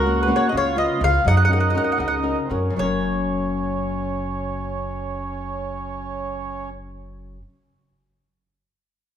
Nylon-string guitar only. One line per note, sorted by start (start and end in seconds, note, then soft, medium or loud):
0.00 0.29 C#3 medium
0.06 0.26 A#3 soft
0.06 0.27 C#4 soft
0.06 0.27 F#4 soft
0.27 0.48 A#3 medium
0.27 0.48 C#4 soft
0.27 0.48 F#4 medium
0.52 0.99 C#3 medium
0.76 0.99 B3 medium
0.76 1.00 C#4 soft
0.76 1.00 F4 medium
1.01 1.20 B3 soft
1.01 1.21 C#4 soft
1.01 1.21 F4 medium
1.25 1.73 F#3 medium
1.49 1.73 C#4 soft
1.49 1.73 F#4 soft
1.49 1.74 A#4 soft
1.75 2.15 C#4 medium
1.75 2.15 F#4 soft
1.75 2.16 A#4 medium
1.98 2.49 C#3 medium
2.23 2.48 C#4 soft
2.23 2.49 F#4 soft
2.23 2.50 A#4 medium
2.50 2.71 C#4 soft
2.50 2.72 F#4 soft
2.50 2.72 A#4 soft
2.70 7.37 F#2 medium
2.70 7.38 C#3 soft
2.76 7.40 F#3 soft
2.76 7.41 A#3 soft
2.82 7.43 C#4 soft
2.82 7.44 A#4 soft